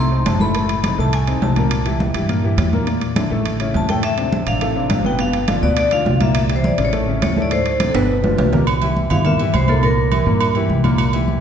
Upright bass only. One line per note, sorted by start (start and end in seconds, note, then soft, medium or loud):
0.00 0.23 C2 medium
0.25 0.93 F#1 medium
0.98 1.39 C2 loud
1.41 2.09 C2 medium
2.14 2.55 G2 medium
2.57 3.25 E2 medium
3.30 3.71 A1 loud
3.74 4.41 D2 loud
4.46 4.87 A1 medium
4.89 5.57 G1 medium
5.62 6.03 D2 loud
6.05 6.73 C2 medium
6.78 7.19 A1 loud
7.21 7.89 D2 medium
7.94 8.35 G1 medium
8.37 9.05 C2 medium
9.10 9.51 G2 medium
9.53 10.21 C2 loud
10.26 10.67 G2 loud
10.69 11.37 C2 medium